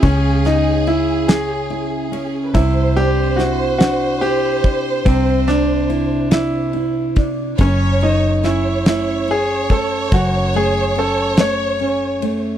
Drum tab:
RD |xxxxxx|xxxxxx|xxxxxx|xxxxxx|
SD |-o-o--|--oo--|-o-o--|--oo--|
BD |o-----|o----o|o----o|o----o|

RD |xxxxxx|
SD |---o--|
BD |o-----|